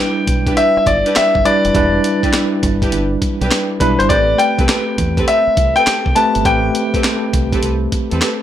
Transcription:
Already playing: tine electric piano G3 D4 E4 B4, grand piano G5
0.27 fingered electric bass B1, kick, closed hi-hat
0.46 string section D4 E4 G4 B4, kick, closed hi-hat
0.57 grand piano E5, closed hi-hat
0.77 grand piano E5, muted fingered electric bass stroke
0.86 fingered electric bass G1, grand piano D5, kick, closed hi-hat
1.05 string section D4 E4 G4 B4, closed hi-hat
1.16 grand piano E5, muted fingered electric bass stroke, snare, clap, closed hi-hat
1.35 fingered electric bass G1, kick
1.45 tine electric piano G3 D4 E4 B4, grand piano D5, closed hi-hat
1.65 fingered electric bass F1, closed hi-hat
1.75 fingered electric bass E1, tine electric piano G3 D4 E4 B4, kick, closed hi-hat
2.04 closed hi-hat
2.23 string section D4 E4 G4 B4, muted fingered electric bass stroke, kick, closed hi-hat
2.33 snare, clap, closed hi-hat
2.63 fingered electric bass G1, kick, closed hi-hat
2.82 string section D4 E4 G4 B4, kick, closed hi-hat
2.92 fingered electric bass G1, closed hi-hat
3.22 kick, closed hi-hat
3.41 fingered electric bass B1, string section D4 E4 G4 B4, closed hi-hat
3.51 snare, clap, closed hi-hat
3.80 fingered electric bass B1, tine electric piano G3 D4 E4 B4, grand piano B4, kick, closed hi-hat
3.99 fingered electric bass G1, grand piano C5, closed hi-hat
4.09 fingered electric bass A1, tine electric piano A3 C4 G4 B4, grand piano D5, kick, closed hi-hat
4.38 grand piano G5, closed hi-hat
4.59 fingered electric bass C2, string section C4 G4 A4 B4, kick, closed hi-hat
4.69 snare, clap, closed hi-hat
4.98 fingered electric bass E2, kick, closed hi-hat
5.17 string section C4 G4 A4 B4, kick, closed hi-hat
5.28 grand piano E5, closed hi-hat
5.47 muted fingered electric bass stroke
5.57 fingered electric bass C2, kick, closed hi-hat
5.76 string section C4 G4 A4 B4, grand piano G5, closed hi-hat
5.87 muted fingered electric bass stroke, snare, clap, closed hi-hat
6.06 fingered electric bass C2, kick
6.15 tine electric piano A3 C4 G4 B4, grand piano A5, closed hi-hat
6.35 fingered electric bass G1, closed hi-hat
6.45 fingered electric bass A1, tine electric piano A3 C4 G4 B4, grand piano G5, kick, closed hi-hat
6.75 closed hi-hat
6.94 string section C4 G4 A4 B4, muted fingered electric bass stroke, kick, closed hi-hat
7.04 snare, clap, closed hi-hat
7.33 fingered electric bass C2, kick, closed hi-hat
7.53 string section C4 G4 A4 B4, kick, closed hi-hat
7.63 fingered electric bass C2, closed hi-hat
7.92 kick, closed hi-hat
8.11 fingered electric bass E2, string section C4 G4 A4 B4, closed hi-hat
8.21 snare, clap, closed hi-hat

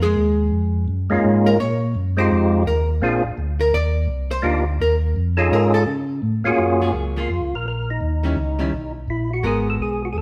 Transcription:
Already playing: tonewheel organ F2
0.03 hollow-body jazz guitar G#3 G#4
0.16 tonewheel organ D#2
0.52 tonewheel organ F2
0.88 tonewheel organ F#2
1.10 tonewheel organ F#2 G#3 A#3 C#4 D#4 F4
1.24 tonewheel organ G#2
1.46 hollow-body jazz guitar A#4
1.60 tonewheel organ A#2, hollow-body jazz guitar C#5
1.95 tonewheel organ F#2
2.17 tonewheel organ G#3 C4 D#4 F4 G4, hollow-body jazz guitar C5
2.31 tonewheel organ F2
2.66 tonewheel organ D#2, hollow-body jazz guitar A#4
3.01 tonewheel organ A#1 A#3 C4 D4 F4 G#4
3.24 tonewheel organ A#1
3.38 tonewheel organ D2
3.61 hollow-body jazz guitar A#4
3.73 tonewheel organ D#2, hollow-body jazz guitar D5
4.08 tonewheel organ C2
4.31 hollow-body jazz guitar C5
4.42 tonewheel organ D2 A#3 D4 D#4 F4 G4
4.80 tonewheel organ D#2, hollow-body jazz guitar A#4
5.16 tonewheel organ F2
5.37 tonewheel organ C#4 D#4 F4 G#4 A4
5.51 tonewheel organ G#2, hollow-body jazz guitar A#4
5.74 hollow-body jazz guitar A4
5.87 tonewheel organ C#3
6.22 tonewheel organ A2
6.44 tonewheel organ A2 A#3 C#4 F4 F#4 G#4
6.58 tonewheel organ F#2
6.81 hollow-body jazz guitar F#3 A#3 F4 G#4
6.93 tonewheel organ C#2
7.16 hollow-body jazz guitar F#3 A#3 F4 G#4, tonewheel organ F4
7.29 tonewheel organ F2
7.41 tonewheel organ C#2
7.54 tonewheel organ A#1 A#4
7.65 tonewheel organ A#1 A#4
7.90 tonewheel organ D#4
8.01 tonewheel organ D#2
8.23 hollow-body jazz guitar D#3 G3 C#4 E4
8.36 tonewheel organ C#2
8.59 hollow-body jazz guitar D#3 G3 C#4 E4
8.73 tonewheel organ B1
9.08 tonewheel organ A#1 E4
9.34 tonewheel organ F#4
9.43 tonewheel organ G#1 G#4, hollow-body jazz guitar G#3 B3 F#4 A#4
9.70 tonewheel organ A4
9.79 tonewheel organ B1 G#4
10.05 tonewheel organ F#4
10.13 tonewheel organ D#2 G#4
10.18 tonewheel organ A4

